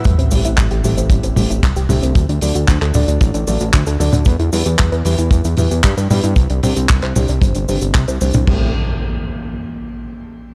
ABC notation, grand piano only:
X:1
M:4/4
L:1/8
Q:1/4=114
K:Ador
V:1 name="Grand piano"
z [A,,A,CEG]2 [A,,A,CEG]2 [A,,A,CEG] z [D,A,CEG] | z [D,DFAd]2 [D,DFAd]2 [D,DFAd] z [DFAd] | z [E,B,EGB]2 [E,B,EGB]2 [E,B,EGB] z [B,EGB] | z [C,CDGc]2 [C,CDGc]2 [C,CDGc] z [A,,CDGc] |
[A,CEG] z6 z |]